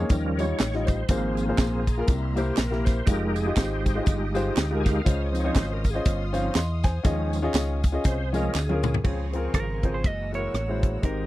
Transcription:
0.00 upright piano G#4 C#5
0.08 fingered electric bass D#2, upright piano D#3, tonewheel organ F3 G3 C#4 A#4, string section D#5 F5 G5, kick, closed hi-hat, tambourine
0.37 upright piano G3 D#4 F4 C#5, tonewheel organ C#5, closed hi-hat, tambourine
0.59 fingered electric bass A1, snare, clap, closed hi-hat, tambourine
0.73 upright piano G3 D#4 F4 D#5, snare
0.80 tonewheel organ C#5
0.85 tonewheel organ C5, kick, closed hi-hat, tambourine
1.08 fingered electric bass G#1, upright piano G#2 A#3 F4 G#4 C5, tonewheel organ F3 A#3 C4, string section F5 G#5 A#5 C6, kick, closed hi-hat, tambourine
1.35 tonewheel organ G#4, closed hi-hat, tambourine
1.48 upright piano A#3 F4 G#4 C5
1.57 fingered electric bass A#1, tonewheel organ G#4, kick, snare, clap, closed hi-hat, tambourine
1.87 kick, closed hi-hat, tambourine
1.97 upright piano A#3 F4 G#4 A#4
2.06 fingered electric bass C2, upright piano C3, tonewheel organ G3 A#3 E4, string section E5 G5, kick, closed hi-hat, tambourine
2.36 upright piano A#3 E4 G4 C5, tonewheel organ G4, closed hi-hat, tambourine
2.57 fingered electric bass A#1, tonewheel organ A#4, snare, clap, closed hi-hat, tambourine
2.71 upright piano A#3 E4 G4 A#4, snare
2.85 tonewheel organ C5, kick, snare, closed hi-hat, tambourine
3.06 fingered electric bass F1, tonewheel organ G#3 D#4 G4 A#4, upright piano G#3 F4 G4 D#5, string section D#5 F5 D#6, kick, closed hi-hat, tambourine
3.35 tonewheel organ G#4, closed hi-hat, tambourine
3.46 upright piano G#3 F4 G4 D#5
3.57 fingered electric bass G#1, tonewheel organ C5, kick, snare, clap, closed hi-hat, tambourine
3.86 kick, closed hi-hat, tambourine
3.95 upright piano G#3 F4 G4 D#5
4.06 fingered electric bass G1, kick, closed hi-hat, tambourine
4.34 upright piano G#3 F4 G4 C5, closed hi-hat, tambourine
4.57 fingered electric bass D2, snare, clap, closed hi-hat, tambourine
4.70 upright piano G#3 F4 G4 A#4
4.77 tonewheel organ G#5
4.83 tonewheel organ F5, kick, snare, closed hi-hat, tambourine
5.05 fingered electric bass C#2, upright piano C#3 C#4 F4 C5 D#5, string section C6, kick, closed hi-hat, tambourine
5.22 tonewheel organ C#5
5.32 tonewheel organ F3 C4 D#4, closed hi-hat, tambourine
5.39 tonewheel organ C#5
5.44 upright piano C#4 F4 C5 D#5
5.55 fingered electric bass G#1, tonewheel organ C5, kick, snare, clap, closed hi-hat, tambourine
5.73 tonewheel organ A#4
5.84 kick, closed hi-hat, tambourine
5.90 upright piano C#4, tonewheel organ G#4
5.94 upright piano F4 C5 D#5
6.05 fingered electric bass G1, tonewheel organ F4, kick, closed hi-hat, tambourine
6.33 tonewheel organ F3 C4 D#4, upright piano C#4 F4 C5 F5, closed hi-hat, tambourine
6.55 fingered electric bass E2, upright piano D#5 C6, snare, clap, closed hi-hat, tambourine
6.84 upright piano C5 G#5, kick, snare, closed hi-hat, tambourine
7.03 fingered electric bass D#2, upright piano D#3 C#4 F4 G#4 D#5, tonewheel organ F3 G#3 C#4, string section G#5, kick, closed hi-hat, tambourine
7.33 closed hi-hat, tambourine
7.42 upright piano C#4 F4 G#4 D#5
7.54 fingered electric bass C#2, snare, clap, closed hi-hat, tambourine
7.84 kick, closed hi-hat, tambourine
7.92 upright piano C#4 F4 G#4 D#5
8.04 fingered electric bass C2, tonewheel organ C5, kick, closed hi-hat, tambourine
8.33 tonewheel organ F3 G#3 C#4 A#4, upright piano C#4 F4 G#4 D#5, closed hi-hat, tambourine
8.55 fingered electric bass D2, tonewheel organ G#4, snare, clap, tambourine
8.69 upright piano C#4 F4 G#4 A#4, high tom
8.83 mid tom, tambourine
8.94 floor tom
9.04 fingered electric bass C#2, tonewheel organ C#3 F3 C4 G#4, upright piano C#3 C4 F4 G#4 C#5, string section F5 G#5 C6 C#6, kick, crash
9.33 upright piano C4 F4 G#4 A#4, closed hi-hat
9.54 fingered electric bass G#1, clean electric guitar A#4, kick, cross-stick, closed hi-hat
9.83 upright piano C4 F4 G#4 C5, kick, closed hi-hat
9.94 clean electric guitar C5
10.03 fingered electric bass F#1, tonewheel organ E3 G#3 A#3 F#4, clean electric guitar D#5, string section F#5 A#5 E6, kick, closed hi-hat
10.32 upright piano G#3 E4 F#4 A#4, clean electric guitar C#5, closed hi-hat
10.54 fingered electric bass A1, cross-stick, closed hi-hat
10.68 upright piano G#3 E4 F#4 C5
10.83 kick, cross-stick, closed hi-hat
11.02 fingered electric bass G#1, upright piano G#2 G#3 D#4 G4 C5, tonewheel organ D#3 C4 G4, clean electric guitar A#4, string section G5 C6 D#6, kick, closed hi-hat

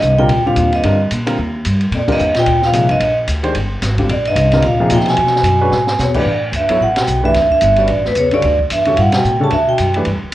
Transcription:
Already playing: bass clarinet G2, vibraphone D#5
0.02 upright bass C2, hi-hat pedal
0.18 bass clarinet A#2, grand piano D3 G3 C4 F4 A#4, vibraphone G5
0.28 upright bass D2, ride
0.45 bass clarinet A#2, grand piano D3 G3 C4 F4 G4, vibraphone F5
0.56 upright bass D#2, hi-hat pedal, ride
0.73 bass clarinet G2, vibraphone D#5, ride
0.83 upright bass G2, grand piano D3 G3 C4 F4 A#4, ride
1.11 upright bass A#2, hi-hat pedal, ride
1.27 grand piano D3 G3 C4 F4 A#4, ride
1.38 upright bass D#2
1.65 upright bass G2, hi-hat pedal, ride
1.81 ride
1.91 bass clarinet F2, upright bass A#2, ride
1.97 vibraphone D5
2.08 bass clarinet G2, grand piano D3 G3 C4 F4 A#4, kick, crash
2.12 vibraphone D#5
2.19 upright bass D#2, hi-hat pedal
2.34 bass clarinet A#2, snare, ride
2.39 vibraphone G5
2.46 upright bass D2, ride
2.62 bass clarinet A#2, vibraphone F5, snare
2.72 upright bass C2, grand piano C3 F3 A#3 D#4 G#4, hi-hat pedal, ride
2.89 bass clarinet G2, vibraphone D#5, ride
3.00 upright bass A#1, ride
3.28 upright bass D2, hi-hat pedal, ride
3.43 grand piano D#3 G#3 D4 G4 C5, ride
3.55 upright bass G1, ride
3.82 upright bass G#1, snare, hi-hat pedal, ride
3.98 grand piano D3 G3 C4 F4 G4, kick, ride
4.09 upright bass A#1, bass clarinet F2, vibraphone D5, ride
4.25 bass clarinet G2, vibraphone D#5, ride
4.35 upright bass C2, hi-hat pedal, ride
4.52 grand piano D3 G3 C4 F4 A#4, snare, ride
4.62 upright bass D2, bass clarinet A#2, ride
4.66 vibraphone F5
4.80 grand piano C3 F3 A#3 D#4 G#4
4.90 upright bass D#2, bass clarinet A#2, hi-hat pedal, ride
4.94 vibraphone G5
5.00 snare
5.06 bass clarinet B2, vibraphone G#5, snare, ride
5.17 upright bass E2, ride
5.26 snare
5.36 snare
5.43 upright bass F#2, hi-hat pedal, ride
5.61 grand piano G#3 C#4 D4 F#4 B4
5.71 upright bass G#2, snare
5.87 snare
5.98 bass clarinet E2, upright bass B2, vibraphone C#5, snare, hi-hat pedal
6.14 bass clarinet G2, grand piano E3 A3 D4 G4 B4, vibraphone D5, kick, crash
6.26 upright bass A2
6.52 upright bass D2, bass clarinet G2, hi-hat pedal, ride
6.56 vibraphone E5
6.69 grand piano F#3 B3 E4 A4 C#5, muted upright bass stroke, ride
6.80 upright bass A1, bass clarinet A2, vibraphone F#5
6.96 bass clarinet B2, vibraphone G5, snare, ride
7.07 upright bass B1, hi-hat pedal
7.23 bass clarinet G2, grand piano E3 A3 D4 G4 B4, vibraphone E5
7.34 upright bass D2, snare, ride
7.50 bass clarinet G2, vibraphone E5, kick
7.61 upright bass G1, hi-hat pedal, ride
7.76 bass clarinet G2, grand piano G3 C#4 F#4 B4 D5, vibraphone D5, ride
7.88 upright bass A1, ride
8.05 bass clarinet D2, vibraphone B4, snare
8.15 upright bass C#2, bass clarinet E2, vibraphone C#5, hi-hat pedal, ride
8.31 bass clarinet G2, grand piano D3 G3 C#4 F#4 A4, vibraphone D5, ride
8.42 upright bass D2, ride
8.59 kick
8.70 upright bass E2, bass clarinet G2, vibraphone E5, hi-hat pedal, ride
8.85 grand piano D3 G3 C#4 F#4 A4, ride
8.93 bass clarinet G2 A2, vibraphone F5, ride
8.98 upright bass G2, vibraphone F#5
9.12 bass clarinet B2, vibraphone G5, snare, ride
9.24 upright bass A2, hi-hat pedal
9.39 bass clarinet C#3, grand piano D3 G3 C#4 F#4 A4
9.44 vibraphone A5
9.50 upright bass D2, bass clarinet G2, vibraphone E5, ride
9.66 bass clarinet B2, vibraphone G5
9.78 upright bass F#2, hi-hat pedal, ride
9.94 grand piano E3 A3 D4 G4 B4, ride
10.05 upright bass G2, ride
10.15 upright bass E2
10.24 upright bass D2

